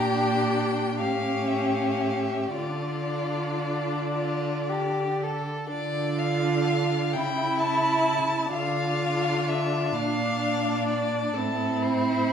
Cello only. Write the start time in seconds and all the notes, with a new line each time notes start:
Already playing: A#2
1.01 A2
2.56 D3
5.72 D3
7.15 C#3
8.56 D3
9.97 A#2
11.37 A2